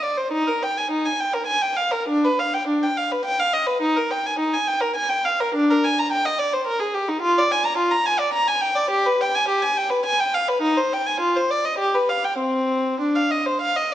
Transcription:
0.02 D5
0.17 C5
0.32 D#4
0.47 A#4
0.63 G5
0.77 G#5
0.91 D#4
1.05 G#5
1.20 G5
1.33 A#4
1.47 G#5
1.61 G5
1.76 F5
1.91 A#4
2.08 D4
2.24 B4
2.39 F5
2.53 G5
2.67 D4
2.83 G5
2.97 F5
3.11 B4
3.25 G5
3.40 F5
3.53 D#5
3.67 B4
3.82 D#4
3.96 A#4
4.11 G5
4.26 G#5
4.39 D#4
4.54 G#5
4.67 G5
4.81 A#4
4.96 G#5
5.09 G5
5.25 F5
5.40 A#4
5.55 D4
5.70 A#4
5.84 G#5
5.99 A#5
6.12 G5
6.25 D#5
6.39 D5
6.53 C5
6.67 A#4
6.79 G#4
6.94 G4
7.08 D#4
7.22 F4
7.38 D5
7.52 G#5
7.65 A#5
7.77 F4
7.91 A#5
8.06 G#5
8.19 D5
8.33 A#5
8.48 G#5
8.61 G5
8.75 D5
8.90 G4
9.06 B4
9.21 G5
9.35 G#5
9.48 G4
9.62 G#5
9.77 G5
9.90 B4
10.06 G#5
10.20 G5
10.34 F5
10.48 B4
10.62 D#4
10.77 C5
10.93 G5
11.06 G#5
11.20 F4
11.36 C5
11.50 D5
11.65 D#5
11.78 G4
11.94 B4
12.09 F5
12.24 G5
12.39 C4
13.00 D4
13.15 F5
13.31 D#5
13.46 C5
13.61 F5
13.76 D#5

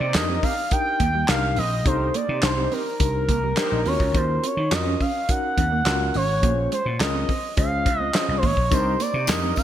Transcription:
Already playing: D5
0.00 C3 D#4 G4 C5
0.14 F2 D4 D#4 G4 A#4 D#5, snare, clap, closed hi-hat
0.28 C4 G4 A#4 D#5
0.42 C4 D#4 G4 A#4 F5, kick, open hi-hat
0.71 D4 D#4 G4 A#4 G5, muted clean electric guitar stroke, kick, closed hi-hat
1.00 D#2 A#3, kick, closed hi-hat
1.15 G3
1.28 C2 D4 D#4 G4 A#4 F5, snare, clap, closed hi-hat
1.56 A#1 C4 D#5, open hi-hat
1.85 C2 C4 D4 D#4 G4 A4 A#4 C5, kick, closed hi-hat
2.00 muted clean electric guitar stroke
2.14 A#3 D5, closed hi-hat
2.29 C3 D#4 G4 C5
2.42 C2 D4 D#4 G4 C5, snare, clap, closed hi-hat
2.57 C4 D#4 G4 C5
2.71 C4 D#4 G4 A#4, open hi-hat
3.00 C2 D4 D#4 G4 A#4, muted clean electric guitar stroke, kick, closed hi-hat
3.29 C2 A#3, kick, closed hi-hat
3.44 G3
3.57 D4 D#4 G4 A#4 C5, snare, clap, closed hi-hat
3.72 A#1
3.86 D#2 C4 C#4 F4 F#4 A#4 C#5, open hi-hat
4.00 C#2, kick
4.15 D#2 D#4 C5, kick, closed hi-hat
4.43 C4 C#5, closed hi-hat
4.57 D#3
4.71 F2 C#4 F4 F#4 A#4 D#5, snare, clap, closed hi-hat
4.87 C#4
5.01 C#4 F5, kick, open hi-hat
5.29 C#4 D#4 F#4 A#4 F#5, muted clean electric guitar stroke, kick, closed hi-hat
5.58 D#2 C4, kick, closed hi-hat
5.72 A#3
5.85 C#2 C#4 F4 F#4 A#4, snare, clap, closed hi-hat
6.14 G#1 C#4 C#5, open hi-hat
6.42 A#1 A#3 C#4 F4 G#4 C5, kick, closed hi-hat
6.58 muted clean electric guitar stroke
6.72 G#3 C5, closed hi-hat
6.86 A#2
7.00 C#2 C#4 F4 G#4 A#4 D#5, snare, clap, closed hi-hat
7.14 C4
7.29 C4, kick, open hi-hat
7.57 C#2 C#4 F4 G#4 C5 F5, muted clean electric guitar stroke, kick, closed hi-hat
7.86 C#2 C#4, kick, closed hi-hat
8.00 C4 D#5
8.13 C#4 F4 G#4 C5 D#5, snare, clap, closed hi-hat
8.29 C2
8.38 C5
8.43 G#1 A#3 C#5, kick, open hi-hat
8.57 A#1, kick
8.71 C2 C4 D4 D#4 G4 A#4 C5, kick, closed hi-hat, tambourine
8.86 muted clean electric guitar stroke
9.00 A#3 D5, closed hi-hat, tambourine
9.14 C3 D#4 G4 C5
9.27 F2 D4 D#4 G4 A#4 D#5, muted clean electric guitar stroke, snare, clap, closed hi-hat, tambourine
9.43 C4 G4 A#4 D#5
9.56 C4 D#4 G4 A#4 F5, kick, open hi-hat, tambourine

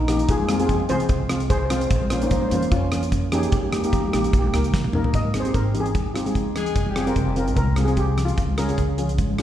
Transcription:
Already playing: A#1
0.01 D#4
0.08 A#3 D#4 G4, cross-stick, closed hi-hat, low conga
0.17 D#4, closed hi-hat
0.28 F2 F4 G#4, kick, closed hi-hat
0.37 G#4, high conga
0.44 G#4
0.49 G#3 C4 F4 G#4, cross-stick, closed hi-hat, high conga
0.60 G#3 C4 F4 G#4, closed hi-hat
0.66 G#4, kick, closed hi-hat, low conga
0.74 G#4
0.80 high conga
0.89 C2 G#3 C4 F4 G#4 C5, closed hi-hat, low conga
1.00 closed hi-hat
1.09 C2, kick, closed hi-hat
1.29 G#3 C4 F4, cross-stick, closed hi-hat, low conga
1.40 closed hi-hat
1.50 G#4 C5, kick, closed hi-hat
1.58 C5
1.65 C5
1.70 G#3 C4 F4 C5, cross-stick, closed hi-hat, low conga
1.80 C5, closed hi-hat
1.87 A#1 C5, kick, closed hi-hat
1.96 C5
2.02 C5, high conga
2.10 A#3 C#4 F4 C5, cross-stick, closed hi-hat, high conga
2.18 C5
2.22 A#3 C#4 D#4 C5, closed hi-hat
2.31 C5, kick, closed hi-hat, low conga
2.42 C5, high conga
2.49 F2 A#3 C#4 F4 C5, closed hi-hat, low conga
2.55 C5
2.62 closed hi-hat
2.72 F2 C#4 F4, kick, closed hi-hat
2.92 A#3 C#4 F4, cross-stick, closed hi-hat, low conga
3.03 closed hi-hat
3.12 kick, closed hi-hat
3.32 A#3 C#4 D#4 G4 G#4, cross-stick, closed hi-hat, low conga
3.40 G4, closed hi-hat
3.48 G4
3.52 D#2 G4, kick, closed hi-hat
3.63 G4, high conga
3.70 A#3 D#4 G4, cross-stick, closed hi-hat, high conga
3.79 G4
3.84 A#3 D#4 G4, closed hi-hat
3.93 G4, kick, closed hi-hat, low conga
4.01 G4, high conga
4.09 G4
4.13 A#1 A#3 D#4 G4, cross-stick, closed hi-hat, low conga
4.24 G4, closed hi-hat
4.32 A#1 G4, kick, closed hi-hat
4.39 G4
4.44 G4, high conga
4.53 C#2 A#3 D#4 G4 A#4, cross-stick, closed hi-hat
4.64 closed hi-hat
4.74 C2, kick, snare
4.84 high tom
4.93 A#1 A#3 D#4 A#4, mid tom, low conga
5.04 floor tom
5.14 G#1 D#5, kick, closed hi-hat
5.25 high conga
5.34 C4 D#4 G#4, cross-stick, closed hi-hat
5.40 C5
5.45 C4 D#4 G4, closed hi-hat
5.54 G#1 A#4, kick, closed hi-hat
5.74 C4 D#4 G4, closed hi-hat, low conga
5.80 G#4
5.86 closed hi-hat
5.95 D#2, kick, closed hi-hat, high conga
6.06 high conga
6.14 C4 D#4 F4 G4, cross-stick, closed hi-hat
6.26 C4 D#4 G#4, closed hi-hat, high conga
6.35 kick, closed hi-hat
6.55 G#3 G#4, cross-stick, closed hi-hat, low conga
6.66 closed hi-hat
6.75 F1, kick, closed hi-hat
6.86 G3 G4, high conga
6.96 C4 F4 G#4, cross-stick, closed hi-hat
7.06 C4 F4 A#4, closed hi-hat
7.16 F1, kick, closed hi-hat
7.36 C4 F4 A#4, closed hi-hat, low conga
7.48 closed hi-hat
7.56 C2 A#4, kick, closed hi-hat, high conga
7.67 high conga
7.76 C4 F4 G#4, cross-stick, closed hi-hat
7.85 C4 F4 G#4, closed hi-hat, high conga
7.97 G4, kick, closed hi-hat
8.17 cross-stick, closed hi-hat, low conga
8.25 F4, closed hi-hat
8.37 C#2, kick, closed hi-hat
8.49 high conga
8.58 C#4 F4 G#4 A#4, cross-stick, closed hi-hat
8.68 C#4 F4 G#4, closed hi-hat
8.78 C#2, kick, closed hi-hat
8.98 C#4 F4 G#4, closed hi-hat, low conga
9.09 closed hi-hat
9.18 G#1, kick, closed hi-hat, high conga
9.30 high conga
9.38 cross-stick, closed hi-hat

